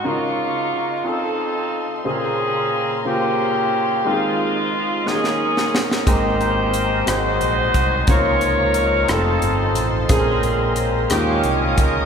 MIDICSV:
0, 0, Header, 1, 7, 480
1, 0, Start_track
1, 0, Key_signature, -4, "major"
1, 0, Tempo, 670391
1, 26, Time_signature, 6, 3, 24, 8
1, 8631, End_track
2, 0, Start_track
2, 0, Title_t, "String section"
2, 0, Program_c, 0, 48
2, 0, Note_on_c, 0, 75, 52
2, 25, Note_on_c, 0, 85, 53
2, 26, Note_on_c, 0, 82, 47
2, 29, Note_on_c, 0, 77, 45
2, 736, Note_off_c, 0, 77, 0
2, 736, Note_off_c, 0, 85, 0
2, 737, Note_off_c, 0, 82, 0
2, 740, Note_on_c, 0, 81, 44
2, 741, Note_on_c, 0, 84, 56
2, 744, Note_on_c, 0, 77, 45
2, 1439, Note_off_c, 0, 75, 0
2, 1452, Note_off_c, 0, 77, 0
2, 1453, Note_off_c, 0, 81, 0
2, 1457, Note_on_c, 0, 82, 52
2, 1459, Note_on_c, 0, 72, 56
2, 1461, Note_on_c, 0, 77, 49
2, 2884, Note_off_c, 0, 82, 0
2, 2885, Note_off_c, 0, 72, 0
2, 2896, Note_on_c, 0, 75, 53
2, 2901, Note_on_c, 0, 72, 47
2, 2903, Note_on_c, 0, 63, 52
2, 3591, Note_off_c, 0, 84, 0
2, 3599, Note_off_c, 0, 77, 0
2, 3614, Note_off_c, 0, 72, 0
2, 3615, Note_off_c, 0, 63, 0
2, 3625, Note_on_c, 0, 73, 50
2, 3628, Note_on_c, 0, 82, 58
2, 4325, Note_off_c, 0, 75, 0
2, 4336, Note_off_c, 0, 73, 0
2, 4346, Note_on_c, 0, 79, 49
2, 4347, Note_on_c, 0, 72, 50
2, 5052, Note_off_c, 0, 82, 0
2, 5058, Note_off_c, 0, 72, 0
2, 5058, Note_off_c, 0, 79, 0
2, 5068, Note_on_c, 0, 84, 58
2, 5071, Note_on_c, 0, 78, 50
2, 5074, Note_on_c, 0, 75, 47
2, 5767, Note_off_c, 0, 75, 0
2, 5775, Note_on_c, 0, 82, 50
2, 5776, Note_on_c, 0, 75, 54
2, 5779, Note_on_c, 0, 85, 63
2, 5780, Note_off_c, 0, 84, 0
2, 5781, Note_off_c, 0, 78, 0
2, 5781, Note_on_c, 0, 77, 54
2, 6494, Note_off_c, 0, 82, 0
2, 6496, Note_off_c, 0, 85, 0
2, 6509, Note_on_c, 0, 84, 64
2, 6510, Note_on_c, 0, 81, 46
2, 7209, Note_off_c, 0, 75, 0
2, 7211, Note_off_c, 0, 77, 0
2, 7222, Note_off_c, 0, 81, 0
2, 7235, Note_on_c, 0, 72, 53
2, 7236, Note_on_c, 0, 82, 50
2, 7936, Note_off_c, 0, 84, 0
2, 7945, Note_off_c, 0, 72, 0
2, 7946, Note_off_c, 0, 82, 0
2, 7953, Note_on_c, 0, 85, 51
2, 7954, Note_on_c, 0, 87, 66
2, 7955, Note_on_c, 0, 77, 60
2, 8631, Note_off_c, 0, 77, 0
2, 8631, Note_off_c, 0, 85, 0
2, 8631, Note_off_c, 0, 87, 0
2, 8631, End_track
3, 0, Start_track
3, 0, Title_t, "Saxophone section"
3, 0, Program_c, 1, 65
3, 41, Note_on_c, 1, 58, 45
3, 42, Note_on_c, 1, 65, 61
3, 43, Note_on_c, 1, 56, 45
3, 723, Note_off_c, 1, 56, 0
3, 723, Note_off_c, 1, 58, 0
3, 752, Note_off_c, 1, 65, 0
3, 760, Note_on_c, 1, 60, 51
3, 761, Note_on_c, 1, 63, 50
3, 764, Note_on_c, 1, 69, 70
3, 1293, Note_off_c, 1, 69, 0
3, 1358, Note_off_c, 1, 60, 0
3, 1358, Note_off_c, 1, 63, 0
3, 1479, Note_on_c, 1, 60, 49
3, 1482, Note_on_c, 1, 61, 51
3, 1483, Note_on_c, 1, 68, 73
3, 2161, Note_off_c, 1, 60, 0
3, 2163, Note_off_c, 1, 61, 0
3, 2163, Note_off_c, 1, 68, 0
3, 2200, Note_on_c, 1, 61, 53
3, 2200, Note_on_c, 1, 67, 68
3, 2201, Note_on_c, 1, 60, 49
3, 2882, Note_off_c, 1, 60, 0
3, 2882, Note_off_c, 1, 61, 0
3, 2911, Note_off_c, 1, 67, 0
3, 2919, Note_on_c, 1, 65, 69
3, 2924, Note_on_c, 1, 56, 46
3, 2924, Note_on_c, 1, 60, 49
3, 3604, Note_off_c, 1, 56, 0
3, 3604, Note_off_c, 1, 60, 0
3, 3630, Note_off_c, 1, 65, 0
3, 3636, Note_on_c, 1, 68, 73
3, 3639, Note_on_c, 1, 61, 55
3, 4169, Note_off_c, 1, 68, 0
3, 4322, Note_off_c, 1, 61, 0
3, 4351, Note_on_c, 1, 72, 79
3, 4356, Note_on_c, 1, 63, 56
3, 4357, Note_on_c, 1, 67, 54
3, 5039, Note_off_c, 1, 72, 0
3, 5041, Note_off_c, 1, 63, 0
3, 5042, Note_off_c, 1, 67, 0
3, 5073, Note_on_c, 1, 72, 83
3, 5080, Note_on_c, 1, 63, 62
3, 5080, Note_on_c, 1, 66, 61
3, 5761, Note_off_c, 1, 72, 0
3, 5764, Note_off_c, 1, 63, 0
3, 5764, Note_off_c, 1, 66, 0
3, 5801, Note_on_c, 1, 70, 59
3, 5801, Note_on_c, 1, 73, 85
3, 5802, Note_on_c, 1, 65, 61
3, 6485, Note_off_c, 1, 70, 0
3, 6486, Note_off_c, 1, 65, 0
3, 6514, Note_off_c, 1, 73, 0
3, 6514, Note_on_c, 1, 69, 78
3, 6517, Note_on_c, 1, 60, 61
3, 6518, Note_on_c, 1, 63, 60
3, 7051, Note_off_c, 1, 69, 0
3, 7113, Note_off_c, 1, 60, 0
3, 7113, Note_off_c, 1, 63, 0
3, 7234, Note_on_c, 1, 68, 69
3, 7240, Note_on_c, 1, 60, 55
3, 7240, Note_on_c, 1, 61, 52
3, 7683, Note_off_c, 1, 68, 0
3, 7927, Note_off_c, 1, 60, 0
3, 7927, Note_off_c, 1, 61, 0
3, 7960, Note_on_c, 1, 58, 62
3, 7964, Note_on_c, 1, 67, 76
3, 7965, Note_on_c, 1, 61, 60
3, 8293, Note_off_c, 1, 67, 0
3, 8325, Note_on_c, 1, 65, 70
3, 8437, Note_off_c, 1, 65, 0
3, 8449, Note_on_c, 1, 70, 80
3, 8631, Note_off_c, 1, 58, 0
3, 8631, Note_off_c, 1, 61, 0
3, 8631, Note_off_c, 1, 70, 0
3, 8631, End_track
4, 0, Start_track
4, 0, Title_t, "Grand piano"
4, 0, Program_c, 2, 0
4, 0, Control_c, 2, 64, 127
4, 31, Note_on_c, 2, 61, 53
4, 35, Control_c, 2, 64, 0
4, 35, Note_on_c, 2, 63, 49
4, 36, Note_on_c, 2, 65, 47
4, 37, Note_on_c, 2, 49, 43
4, 39, Note_on_c, 2, 70, 58
4, 163, Control_c, 2, 64, 127
4, 661, Note_off_c, 2, 61, 0
4, 663, Note_off_c, 2, 63, 0
4, 664, Note_off_c, 2, 65, 0
4, 665, Note_off_c, 2, 70, 0
4, 720, Note_off_c, 2, 49, 0
4, 742, Note_on_c, 2, 60, 44
4, 745, Note_on_c, 2, 63, 42
4, 747, Note_on_c, 2, 65, 43
4, 749, Note_on_c, 2, 69, 47
4, 752, Control_c, 2, 64, 0
4, 882, Control_c, 2, 64, 127
4, 1376, Note_off_c, 2, 60, 0
4, 1378, Note_off_c, 2, 63, 0
4, 1378, Note_off_c, 2, 65, 0
4, 1380, Note_off_c, 2, 69, 0
4, 1463, Note_on_c, 2, 58, 55
4, 1468, Note_on_c, 2, 46, 46
4, 1468, Note_on_c, 2, 72, 52
4, 1470, Control_c, 2, 64, 0
4, 1470, Note_on_c, 2, 49, 51
4, 1474, Note_on_c, 2, 68, 60
4, 1580, Control_c, 2, 64, 127
4, 2096, Note_off_c, 2, 58, 0
4, 2099, Note_off_c, 2, 72, 0
4, 2100, Note_off_c, 2, 49, 0
4, 2102, Note_off_c, 2, 68, 0
4, 2156, Note_off_c, 2, 46, 0
4, 2181, Note_on_c, 2, 58, 44
4, 2184, Note_on_c, 2, 72, 42
4, 2187, Note_on_c, 2, 49, 42
4, 2190, Note_on_c, 2, 65, 51
4, 2815, Note_off_c, 2, 58, 0
4, 2817, Note_off_c, 2, 72, 0
4, 2818, Note_off_c, 2, 49, 0
4, 2820, Note_off_c, 2, 65, 0
4, 2899, Note_on_c, 2, 56, 56
4, 2903, Note_on_c, 2, 60, 49
4, 2906, Note_on_c, 2, 51, 43
4, 2906, Note_on_c, 2, 63, 51
4, 2907, Note_on_c, 2, 67, 49
4, 2911, Control_c, 2, 64, 0
4, 2951, Note_off_c, 2, 67, 0
4, 2957, Note_on_c, 2, 68, 62
4, 3054, Control_c, 2, 64, 127
4, 3535, Note_off_c, 2, 56, 0
4, 3537, Note_off_c, 2, 60, 0
4, 3538, Note_off_c, 2, 63, 0
4, 3564, Note_off_c, 2, 68, 0
4, 3595, Note_off_c, 2, 51, 0
4, 3619, Note_on_c, 2, 58, 47
4, 3623, Note_on_c, 2, 61, 38
4, 3625, Note_on_c, 2, 51, 44
4, 3625, Note_on_c, 2, 63, 41
4, 3627, Note_on_c, 2, 67, 39
4, 3631, Control_c, 2, 64, 0
4, 3671, Note_off_c, 2, 67, 0
4, 3676, Note_on_c, 2, 68, 52
4, 3743, Control_c, 2, 64, 127
4, 4255, Note_off_c, 2, 58, 0
4, 4257, Note_off_c, 2, 61, 0
4, 4258, Note_off_c, 2, 63, 0
4, 4284, Note_off_c, 2, 68, 0
4, 4315, Note_off_c, 2, 51, 0
4, 4341, Note_on_c, 2, 56, 55
4, 4345, Note_on_c, 2, 58, 50
4, 4346, Note_on_c, 2, 44, 45
4, 4349, Note_on_c, 2, 60, 48
4, 4351, Control_c, 2, 64, 0
4, 4351, Note_on_c, 2, 67, 62
4, 4461, Control_c, 2, 64, 127
4, 4977, Note_off_c, 2, 56, 0
4, 4979, Note_off_c, 2, 58, 0
4, 4981, Note_off_c, 2, 60, 0
4, 4982, Note_off_c, 2, 67, 0
4, 5036, Note_off_c, 2, 44, 0
4, 5059, Note_on_c, 2, 56, 46
4, 5062, Note_on_c, 2, 58, 34
4, 5063, Note_on_c, 2, 44, 46
4, 5066, Note_on_c, 2, 66, 53
4, 5067, Note_on_c, 2, 63, 42
4, 5074, Control_c, 2, 64, 0
4, 5109, Note_off_c, 2, 58, 0
4, 5109, Note_on_c, 2, 60, 43
4, 5206, Control_c, 2, 64, 127
4, 5697, Note_off_c, 2, 56, 0
4, 5700, Note_off_c, 2, 63, 0
4, 5700, Note_off_c, 2, 66, 0
4, 5721, Note_off_c, 2, 60, 0
4, 5756, Note_off_c, 2, 44, 0
4, 5789, Note_on_c, 2, 58, 60
4, 5789, Note_on_c, 2, 61, 53
4, 5792, Note_on_c, 2, 49, 47
4, 5792, Note_on_c, 2, 63, 52
4, 5794, Control_c, 2, 64, 0
4, 5794, Note_on_c, 2, 65, 66
4, 5905, Control_c, 2, 64, 127
4, 6422, Note_off_c, 2, 58, 0
4, 6422, Note_off_c, 2, 61, 0
4, 6424, Note_off_c, 2, 63, 0
4, 6425, Note_off_c, 2, 65, 0
4, 6481, Note_off_c, 2, 49, 0
4, 6500, Note_on_c, 2, 55, 39
4, 6501, Note_on_c, 2, 60, 47
4, 6503, Note_on_c, 2, 63, 44
4, 6509, Note_on_c, 2, 65, 55
4, 6516, Control_c, 2, 64, 0
4, 6545, Note_on_c, 2, 57, 49
4, 6550, Note_off_c, 2, 55, 0
4, 6644, Control_c, 2, 64, 127
4, 7139, Note_off_c, 2, 60, 0
4, 7140, Note_off_c, 2, 63, 0
4, 7143, Note_off_c, 2, 65, 0
4, 7161, Note_off_c, 2, 57, 0
4, 7225, Note_on_c, 2, 58, 60
4, 7227, Note_on_c, 2, 46, 48
4, 7227, Note_on_c, 2, 72, 56
4, 7231, Note_on_c, 2, 49, 54
4, 7234, Note_on_c, 2, 68, 65
4, 7237, Control_c, 2, 64, 0
4, 7376, Control_c, 2, 64, 127
4, 7862, Note_off_c, 2, 58, 0
4, 7863, Note_off_c, 2, 72, 0
4, 7865, Note_off_c, 2, 49, 0
4, 7866, Note_off_c, 2, 68, 0
4, 7920, Note_off_c, 2, 46, 0
4, 7946, Note_on_c, 2, 56, 48
4, 7951, Note_on_c, 2, 61, 45
4, 7953, Note_on_c, 2, 51, 49
4, 7953, Note_on_c, 2, 63, 47
4, 7958, Note_on_c, 2, 65, 57
4, 7959, Control_c, 2, 64, 0
4, 8082, Control_c, 2, 64, 127
4, 8583, Note_off_c, 2, 56, 0
4, 8586, Note_off_c, 2, 61, 0
4, 8586, Note_off_c, 2, 63, 0
4, 8589, Note_off_c, 2, 65, 0
4, 8631, Note_off_c, 2, 51, 0
4, 8631, End_track
5, 0, Start_track
5, 0, Title_t, "Tonewheel organ"
5, 0, Program_c, 3, 16
5, 4345, Note_on_c, 3, 60, 45
5, 4347, Note_on_c, 3, 56, 49
5, 4348, Note_on_c, 3, 67, 41
5, 4350, Note_on_c, 3, 70, 50
5, 5060, Note_off_c, 3, 60, 0
5, 5065, Note_off_c, 3, 56, 0
5, 5066, Note_off_c, 3, 67, 0
5, 5067, Note_off_c, 3, 70, 0
5, 5068, Note_on_c, 3, 60, 43
5, 5072, Note_on_c, 3, 54, 46
5, 5073, Note_on_c, 3, 63, 42
5, 5073, Note_on_c, 3, 68, 53
5, 5777, Note_off_c, 3, 63, 0
5, 5778, Note_on_c, 3, 70, 55
5, 5782, Note_on_c, 3, 53, 47
5, 5783, Note_on_c, 3, 61, 43
5, 5785, Note_on_c, 3, 63, 45
5, 5787, Note_off_c, 3, 60, 0
5, 5789, Note_off_c, 3, 54, 0
5, 5790, Note_off_c, 3, 68, 0
5, 6495, Note_off_c, 3, 63, 0
5, 6496, Note_off_c, 3, 53, 0
5, 6503, Note_off_c, 3, 70, 0
5, 6503, Note_on_c, 3, 63, 45
5, 6504, Note_on_c, 3, 53, 50
5, 6505, Note_off_c, 3, 61, 0
5, 6505, Note_on_c, 3, 69, 52
5, 6507, Note_on_c, 3, 60, 45
5, 7225, Note_on_c, 3, 72, 46
5, 7226, Note_off_c, 3, 63, 0
5, 7227, Note_off_c, 3, 53, 0
5, 7227, Note_off_c, 3, 69, 0
5, 7228, Note_off_c, 3, 60, 0
5, 7228, Note_on_c, 3, 56, 51
5, 7228, Note_on_c, 3, 70, 58
5, 7229, Note_on_c, 3, 49, 46
5, 7943, Note_off_c, 3, 56, 0
5, 7948, Note_off_c, 3, 72, 0
5, 7948, Note_on_c, 3, 63, 45
5, 7949, Note_off_c, 3, 70, 0
5, 7950, Note_off_c, 3, 49, 0
5, 7950, Note_on_c, 3, 61, 45
5, 7952, Note_on_c, 3, 51, 54
5, 7952, Note_on_c, 3, 56, 48
5, 7995, Note_off_c, 3, 63, 0
5, 7998, Note_on_c, 3, 65, 58
5, 8631, Note_off_c, 3, 51, 0
5, 8631, Note_off_c, 3, 56, 0
5, 8631, Note_off_c, 3, 61, 0
5, 8631, Note_off_c, 3, 65, 0
5, 8631, End_track
6, 0, Start_track
6, 0, Title_t, "Fingered electric bass"
6, 0, Program_c, 4, 33
6, 4346, Note_on_c, 4, 32, 72
6, 5036, Note_off_c, 4, 32, 0
6, 5065, Note_on_c, 4, 32, 69
6, 5285, Note_off_c, 4, 32, 0
6, 5306, Note_on_c, 4, 34, 67
6, 5526, Note_off_c, 4, 34, 0
6, 5545, Note_on_c, 4, 36, 56
6, 5766, Note_off_c, 4, 36, 0
6, 5785, Note_on_c, 4, 37, 77
6, 6478, Note_off_c, 4, 37, 0
6, 6508, Note_on_c, 4, 29, 80
6, 6728, Note_off_c, 4, 29, 0
6, 6748, Note_on_c, 4, 31, 71
6, 6984, Note_off_c, 4, 31, 0
6, 6984, Note_on_c, 4, 33, 64
6, 7206, Note_off_c, 4, 33, 0
6, 7228, Note_on_c, 4, 34, 74
6, 7921, Note_off_c, 4, 34, 0
6, 7954, Note_on_c, 4, 39, 79
6, 8173, Note_off_c, 4, 39, 0
6, 8194, Note_on_c, 4, 36, 73
6, 8413, Note_off_c, 4, 36, 0
6, 8434, Note_on_c, 4, 37, 58
6, 8631, Note_off_c, 4, 37, 0
6, 8631, End_track
7, 0, Start_track
7, 0, Title_t, "Drums"
7, 3631, Note_on_c, 9, 38, 37
7, 3702, Note_off_c, 9, 38, 0
7, 3753, Note_on_c, 9, 38, 42
7, 3824, Note_off_c, 9, 38, 0
7, 3990, Note_on_c, 9, 38, 49
7, 4062, Note_off_c, 9, 38, 0
7, 4114, Note_on_c, 9, 38, 70
7, 4186, Note_off_c, 9, 38, 0
7, 4235, Note_on_c, 9, 38, 55
7, 4306, Note_off_c, 9, 38, 0
7, 4345, Note_on_c, 9, 36, 84
7, 4346, Note_on_c, 9, 42, 72
7, 4417, Note_off_c, 9, 36, 0
7, 4418, Note_off_c, 9, 42, 0
7, 4587, Note_on_c, 9, 42, 33
7, 4659, Note_off_c, 9, 42, 0
7, 4823, Note_on_c, 9, 42, 50
7, 4895, Note_off_c, 9, 42, 0
7, 5064, Note_on_c, 9, 42, 63
7, 5070, Note_on_c, 9, 37, 86
7, 5135, Note_off_c, 9, 42, 0
7, 5142, Note_off_c, 9, 37, 0
7, 5304, Note_on_c, 9, 42, 38
7, 5376, Note_off_c, 9, 42, 0
7, 5544, Note_on_c, 9, 42, 52
7, 5545, Note_on_c, 9, 36, 69
7, 5616, Note_off_c, 9, 36, 0
7, 5616, Note_off_c, 9, 42, 0
7, 5780, Note_on_c, 9, 42, 73
7, 5783, Note_on_c, 9, 36, 86
7, 5851, Note_off_c, 9, 42, 0
7, 5855, Note_off_c, 9, 36, 0
7, 6022, Note_on_c, 9, 42, 36
7, 6093, Note_off_c, 9, 42, 0
7, 6259, Note_on_c, 9, 42, 53
7, 6273, Note_on_c, 9, 37, 25
7, 6331, Note_off_c, 9, 42, 0
7, 6344, Note_off_c, 9, 37, 0
7, 6505, Note_on_c, 9, 42, 64
7, 6511, Note_on_c, 9, 37, 81
7, 6576, Note_off_c, 9, 42, 0
7, 6582, Note_off_c, 9, 37, 0
7, 6745, Note_on_c, 9, 42, 39
7, 6816, Note_off_c, 9, 42, 0
7, 6984, Note_on_c, 9, 42, 54
7, 7056, Note_off_c, 9, 42, 0
7, 7226, Note_on_c, 9, 42, 74
7, 7228, Note_on_c, 9, 36, 88
7, 7297, Note_off_c, 9, 42, 0
7, 7300, Note_off_c, 9, 36, 0
7, 7469, Note_on_c, 9, 42, 38
7, 7541, Note_off_c, 9, 42, 0
7, 7703, Note_on_c, 9, 42, 55
7, 7775, Note_off_c, 9, 42, 0
7, 7946, Note_on_c, 9, 42, 64
7, 7953, Note_on_c, 9, 37, 85
7, 8018, Note_off_c, 9, 42, 0
7, 8024, Note_off_c, 9, 37, 0
7, 8188, Note_on_c, 9, 42, 38
7, 8259, Note_off_c, 9, 42, 0
7, 8431, Note_on_c, 9, 42, 56
7, 8433, Note_on_c, 9, 36, 81
7, 8503, Note_off_c, 9, 42, 0
7, 8504, Note_off_c, 9, 36, 0
7, 8631, End_track
0, 0, End_of_file